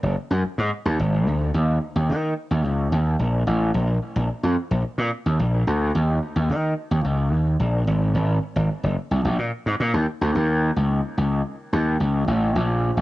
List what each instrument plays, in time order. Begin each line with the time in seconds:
0.03 slap bass F#1
0.31 slap bass F#2
0.44 muted slap bass stroke
0.58 slap bass G#2
0.86 slap bass D#2
0.99 slap bass G#1
1.27 slap bass D2
1.54 slap bass D#2
1.96 slap bass D#2
2.10 slap bass D#3
2.51 slap bass D#2
2.64 slap bass C#2
2.92 slap bass D#2
3.19 slap bass A#1
3.47 slap bass A1
3.74 slap bass A#1
4.16 slap bass A#1
4.43 slap bass F2
4.71 slap bass A#1
4.85 muted slap bass stroke
4.98 slap bass A#2
5.26 slap bass D#2
5.39 slap bass A#1
5.67 slap bass D2
5.95 slap bass D#2
6.36 slap bass D#2
6.49 slap bass D#3
6.91 slap bass D#2
7.05 slap bass C#2
7.32 slap bass D#2
7.59 slap bass A#1
7.87 slap bass G#1
8.14 slap bass G#1
8.56 slap bass G#1
8.83 slap bass F#1
9.11 slap bass C2
9.25 slap bass A#1
9.38 slap bass A#2
9.66 slap bass G#2
9.80 slap bass A#2
9.94 slap bass D#2
10.21 slap bass D2
10.35 slap bass D#2
10.76 slap bass C#2
11.18 slap bass C#2
11.73 slap bass D#2
12.00 slap bass C#2
12.28 slap bass A1
12.55 slap bass A#1
12.97 slap bass A#1